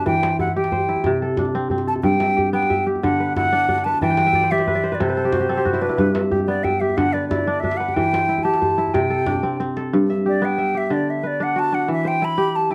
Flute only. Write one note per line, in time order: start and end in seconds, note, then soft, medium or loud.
0.07 0.37 G5 loud
0.40 0.55 F#5 medium
0.57 1.18 G5 medium
1.88 1.94 A5 medium
2.03 2.50 G5 loud
2.54 2.84 G5 medium
3.03 3.34 F#5 medium
3.36 3.86 F#5 loud
3.84 4.01 A5 medium
4.02 4.53 G5 loud
4.51 4.96 E5 medium
4.95 5.02 D5 soft
5.00 5.83 C5 medium
5.82 6.21 B4 medium
6.47 6.65 D5 medium
6.64 6.82 G5 medium
6.80 6.99 E5 medium
6.97 7.14 F#5 medium
7.13 7.28 D5 medium
7.29 7.62 D5 medium
7.60 7.78 E5 medium
7.77 7.96 F#5 medium
7.94 8.45 G5 loud
8.43 8.95 A5 medium
8.94 9.60 G5 medium
10.28 10.46 D5 medium
10.45 10.79 G5 medium
10.78 10.95 E5 medium
10.93 11.12 D5 medium
11.10 11.28 E5 medium
11.27 11.44 D5 medium
11.43 11.60 F#5 medium
11.59 11.76 A5 loud
11.74 11.90 F#5 medium
11.93 12.09 E5 loud
12.08 12.26 G5 medium
12.25 12.57 B5 loud
12.56 12.73 A5 medium
12.71 12.75 G5 loud